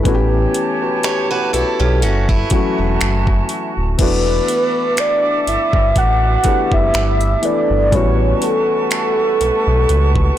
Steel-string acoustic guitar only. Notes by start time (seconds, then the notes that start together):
1.04 G4 C#5
1.31 F#4 B4
1.53 E4 A4
1.80 C#4 G4
2.02 C#4 F#4
2.29 B3 E4